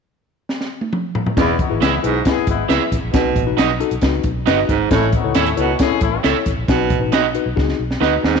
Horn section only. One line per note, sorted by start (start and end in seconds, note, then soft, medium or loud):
1.37 1.55 G#3 medium
1.37 1.55 B3 medium
1.37 1.55 E4 loud
1.59 1.77 B3 medium
1.59 1.77 D#4 medium
1.59 1.77 F#4 medium
1.81 1.99 G#3 medium
1.81 1.99 B3 medium
1.81 1.99 E4 medium
2.02 2.21 B3 medium
2.02 2.21 D#4 medium
2.02 2.21 F#4 medium
2.25 2.43 B3 medium
2.25 2.43 E4 medium
2.25 2.43 G#4 medium
2.47 2.65 G#3 medium
2.47 2.65 B3 medium
2.47 2.65 E4 medium
4.92 5.09 A3 medium
4.92 5.09 C#4 medium
4.92 5.09 E4 loud
5.13 5.31 B3 medium
5.13 5.31 D#4 medium
5.13 5.31 F#4 medium
5.35 5.53 A3 medium
5.35 5.53 C#4 medium
5.35 5.53 E4 medium
5.58 5.75 B3 medium
5.58 5.75 D#4 medium
5.58 5.75 F#4 medium
5.79 5.97 C#4 medium
5.79 5.97 E4 medium
5.79 5.97 G#4 medium
6.01 6.19 A3 medium
6.01 6.19 C#4 medium
6.01 6.19 E4 medium